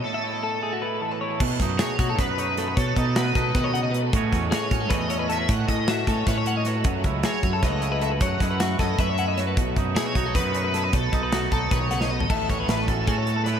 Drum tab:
CC |--------------|x-------------|--------------|--------------|
HH |--------------|--x-x-x-x-x-x-|x-x-x-x-x-x-x-|x-x-x-x-x-x-x-|
SD |--------------|--o-o---o---o-|----o---------|--o-o---o-----|
FT |--------------|--------------|--------------|--------------|
BD |--------------|o-o---o-o-----|o-o---o-o-----|o-o---o-o-----|

CC |--------------|--------------|--------------|--------------|
HH |x-x-x-x-x-x-x-|x-x-x-x-x-x-x-|x-x-x-x-x-x-x-|x-x-x-x-x-x-x-|
SD |----o-o-o---o-|----o---o-----|--o-o-o-----o-|----o-------o-|
FT |--------------|--------------|--------------|--------------|
BD |o-o---o-o-----|o-o---o-o-----|o-o---o-o-----|o-o---o-o-----|

CC |--------------|x-------------|
HH |x-x-x-x-x-x---|--x-x-x-x-x-x-|
SD |----o-----oo--|----o-------o-|
FT |-------------o|--------------|
BD |o-o---o-o-----|o-o---o-o-----|